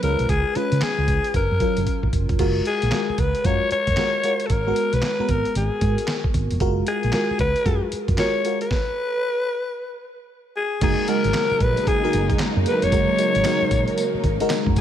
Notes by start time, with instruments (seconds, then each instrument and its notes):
0.03 fingered electric bass C#2, fm electric piano G#3 C#4 F4 B4, alto saxophone A#4, closed hi-hat
0.19 fingered electric bass B1, closed hi-hat
0.29 fingered electric bass C#2, alto saxophone G#4, kick, closed hi-hat
0.55 fm electric piano G#3 C#4 F4 B4, alto saxophone B4, muted fingered electric bass stroke, closed hi-hat
0.72 fingered electric bass C#3, closed hi-hat
0.81 alto saxophone G#4, muted fingered electric bass stroke, snare, clap, closed hi-hat
0.98 fingered electric bass C#2
1.08 kick, closed hi-hat
1.24 closed hi-hat
1.34 fingered electric bass F#1, alto saxophone A#4, kick, closed hi-hat
1.51 fingered electric bass F#2
1.60 fm electric piano F#3 C#4 F4 A#4, kick, closed hi-hat
1.77 fingered electric bass F#1, closed hi-hat
1.87 kick, closed hi-hat
2.03 fingered electric bass G#1, kick
2.13 fingered electric bass F#1, kick, closed hi-hat
2.29 fingered electric bass F1, kick, closed hi-hat
2.39 fingered electric bass F#1, fm electric piano G#3 F4 F#4 A#4, kick, closed hi-hat, crash
2.65 alto saxophone G#4, closed hi-hat
2.82 fingered electric bass A#1, closed hi-hat
2.92 fm electric piano G#3 F4 F#4 A#4, snare, clap, closed hi-hat
3.09 muted fingered electric bass stroke
3.18 fingered electric bass C#2, alto saxophone B4, kick, closed hi-hat
3.35 closed hi-hat
3.45 fingered electric bass F#2, fm electric piano G#3 F4 F#4 A#4, alto saxophone C#5, kick, closed hi-hat
3.71 alto saxophone C#5, muted fingered electric bass stroke, closed hi-hat
3.87 fingered electric bass F#2, kick, closed hi-hat
3.97 fm electric piano G#3 F4 F#4 A#4, snare, clap, closed hi-hat
4.24 fm electric piano G#3 F4 F#4 A#4, closed hi-hat
4.40 closed hi-hat
4.46 fingered electric bass G#1, alto saxophone A4, kick, closed hi-hat
4.52 alto saxophone A#4
4.67 fm electric piano G#3 B3 F#4 A#4
4.76 closed hi-hat
4.93 fingered electric bass B1, alto saxophone B4, closed hi-hat
5.02 snare, clap, closed hi-hat
5.19 fm electric piano G#3 B3 F#4 A#4, muted fingered electric bass stroke
5.29 fingered electric bass G#1, alto saxophone A#4, kick, closed hi-hat
5.45 closed hi-hat
5.55 fingered electric bass G#1, alto saxophone G#4, closed hi-hat
5.81 fingered electric bass G#2, kick, closed hi-hat
5.98 closed hi-hat
6.08 snare, clap, closed hi-hat
6.24 kick
6.34 fingered electric bass G#1, kick, closed hi-hat
6.51 fingered electric bass F1, closed hi-hat
6.60 fingered electric bass F#1, fm electric piano G#3 F4 F#4 A#4, kick, closed hi-hat
6.87 alto saxophone G#4, closed hi-hat
7.03 fingered electric bass A#1, closed hi-hat
7.13 fm electric piano G#3 F4 F#4 A#4, snare, clap, closed hi-hat
7.30 muted fingered electric bass stroke
7.39 fingered electric bass C#2, alto saxophone B4, kick, closed hi-hat
7.56 closed hi-hat
7.65 fingered electric bass F#2, fm electric piano G#3 F4 F#4 G#4, kick, closed hi-hat
7.92 muted fingered electric bass stroke, closed hi-hat
8.08 fingered electric bass F#2, kick, closed hi-hat
8.18 fm electric piano G#3 F4 F#4 A#4, alto saxophone C#5, snare, clap, closed hi-hat
8.45 fm electric piano G#3 F4 F#4 A#4, closed hi-hat
8.61 alto saxophone B4, closed hi-hat
8.71 kick, snare
10.57 alto saxophone G#4
10.81 fingered electric bass F#1, string section C#3 F#3 G#3 A#3 D#4, fm electric piano G#3 D#4 F#4 A#4, alto saxophone G#4, kick, closed hi-hat, crash
11.08 fm electric piano G#3 D#4 F#4 G#4, alto saxophone A#4, closed hi-hat
11.24 fingered electric bass G#1, closed hi-hat
11.34 snare, clap, closed hi-hat
11.51 muted fingered electric bass stroke
11.60 fingered electric bass A#1, alto saxophone B4, kick, closed hi-hat
11.77 closed hi-hat
11.87 alto saxophone G#4, kick, closed hi-hat
12.03 fm electric piano G#3 D#4 F#4 A#4
12.13 fingered electric bass F#1, closed hi-hat
12.30 kick, closed hi-hat
12.39 snare, clap, closed hi-hat
12.56 fingered electric bass F#2
12.66 alto saxophone B4, closed hi-hat
12.82 fingered electric bass F1, alto saxophone C#5, closed hi-hat
12.92 fingered electric bass F#1, fm electric piano G#3 D#4 F#4 A#4, kick, closed hi-hat, tambourine
13.18 fm electric piano G#3 D#4 F#4 A#4, closed hi-hat, tambourine
13.35 fingered electric bass G#1, closed hi-hat
13.45 fm electric piano G#3 D#4 F#4 A#4, snare, clap, closed hi-hat, tambourine
13.62 muted fingered electric bass stroke
13.71 fingered electric bass A#1, kick, closed hi-hat, tambourine
13.88 closed hi-hat
13.98 closed hi-hat, tambourine
14.14 muted fingered electric bass stroke
14.24 fingered electric bass G#1, kick, closed hi-hat
14.40 fm electric piano G#3 D#4 F#4 A#4, closed hi-hat
14.50 snare, clap, closed hi-hat, tambourine
14.66 fingered electric bass F#2, kick
14.76 kick, closed hi-hat, tambourine